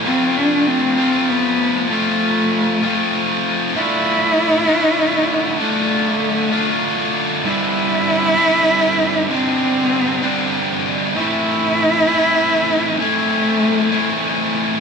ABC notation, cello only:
X:1
M:3/4
L:1/8
Q:1/4=97
K:Am
V:1 name="Cello"
C D C2 B,2 | A,4- A, z | E6 | A,4- A, z |
E6 | C4- C z | E6 | A,4- A, z |]